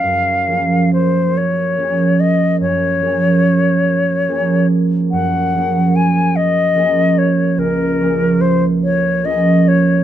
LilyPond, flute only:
\new Staff \with { instrumentName = "Flute" } { \time 12/8 \key ges \major \tempo 4. = 48 f''4 c''8 des''4 ees''8 des''2~ des''8 r8 | ges''4 aes''8 ees''4 des''8 bes'4 c''8 des''8 ees''8 des''8 | }